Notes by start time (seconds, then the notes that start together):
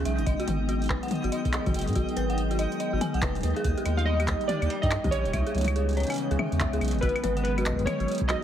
Already playing: C#3 E3 G#3 B3 C#4 D#4 G5
0.05 B1 E5, closed hi-hat
0.19 G#1, closed hi-hat
0.26 G#1 D#3 F#3 G#3 G#4 D#5, kick, closed hi-hat
0.40 F#4, closed hi-hat
0.48 G#1, closed hi-hat, high tom
0.69 F#4, closed hi-hat
0.82 closed hi-hat
0.84 closed hi-hat
0.86 closed hi-hat
0.90 B4, kick, clap
1.03 F#5, closed hi-hat
1.08 closed hi-hat
1.11 closed hi-hat, high tom
1.15 closed hi-hat
1.24 G#1 F#4, closed hi-hat
1.32 D#5, closed hi-hat
1.45 B1, kick, closed hi-hat
1.53 D#5, clap, closed hi-hat
1.66 G#1 F#4, kick, closed hi-hat, high tom
1.74 F#1, closed hi-hat
1.79 closed hi-hat
1.81 closed hi-hat
1.87 G#2, closed hi-hat
1.93 G#1, kick, closed hi-hat
1.95 F#4, closed hi-hat
2.09 closed hi-hat
2.17 G#1 B4, closed hi-hat
2.30 F#5, closed hi-hat
2.38 closed hi-hat
2.51 F#4, closed hi-hat
2.59 D#5, closed hi-hat
2.72 closed hi-hat
2.80 D#5, closed hi-hat
2.93 G#1 F#4
3.01 G#5, closed hi-hat, high tom
3.14 B1 F#5, closed hi-hat
3.22 F#1 B4, kick, clap, closed hi-hat
3.35 D#1, closed hi-hat
3.41 B4, closed hi-hat
3.43 D#2, closed hi-hat
3.48 closed hi-hat
3.50 closed hi-hat
3.56 G#4, closed hi-hat
3.64 D#2 G3 A#3 G4, kick, closed hi-hat
3.78 G4, closed hi-hat
3.86 D#2 D#5, closed hi-hat, claves
3.97 F5, closed hi-hat
4.05 D#5
4.20 G4, closed hi-hat, claves
4.28 kick, clap, closed hi-hat
4.41 closed hi-hat
4.48 G4 D5, closed hi-hat, high tom
4.62 D#2, closed hi-hat, claves
4.70 D5, closed hi-hat
4.82 G2 D#5 G5, kick, closed hi-hat
4.91 clap, closed hi-hat, claves
5.04 D#2 G4, kick, closed hi-hat, high tom
5.11 A#1 C#5 D#5, closed hi-hat
5.25 D#1, closed hi-hat
5.33 C#2 C#3 E3 G#3 B3 C#4 E5, kick, closed hi-hat, claves
5.47 G#4, closed hi-hat
5.55 C#2, closed hi-hat, high tom
5.58 closed hi-hat, high tom
5.61 closed hi-hat, high tom
5.64 closed hi-hat, high tom
5.68 closed hi-hat, claves
5.76 G#4, closed hi-hat
5.89 closed hi-hat
5.91 closed hi-hat
5.93 closed hi-hat
5.95 C#5, closed hi-hat
5.97 closed hi-hat
6.00 closed hi-hat
6.03 closed hi-hat
6.07 G#5, closed hi-hat
6.10 closed hi-hat, claves
6.12 closed hi-hat
6.14 closed hi-hat
6.16 closed hi-hat
6.18 closed hi-hat
6.31 C#2 G#4, closed hi-hat
6.39 E5, high tom, claves
6.52 E2, closed hi-hat
6.60 E5, kick, clap, closed hi-hat
6.73 C#2 G#4, closed hi-hat
6.81 B1, closed hi-hat, claves
6.85 closed hi-hat
6.88 closed hi-hat
6.91 closed hi-hat
6.94 G#1, closed hi-hat
6.99 G#1 F#4 B4, kick, closed hi-hat
7.03 D#3 F#3 G#4, closed hi-hat
7.09 closed hi-hat
7.16 closed hi-hat, claves
7.24 G#1 B4, closed hi-hat, high tom
7.37 F#5, closed hi-hat
7.43 B4, closed hi-hat
7.58 F#4, closed hi-hat, claves
7.66 D#5, kick, clap, closed hi-hat
7.69 kick
7.72 kick
7.76 kick
7.79 kick, closed hi-hat
7.81 kick
7.83 kick
7.85 C#5 D#5, kick, closed hi-hat, high tom, claves
8.00 G#1 F#4, closed hi-hat
8.08 closed hi-hat
8.12 closed hi-hat
8.15 closed hi-hat
8.18 B1, kick, closed hi-hat
8.28 F#4 D#5, clap, closed hi-hat, claves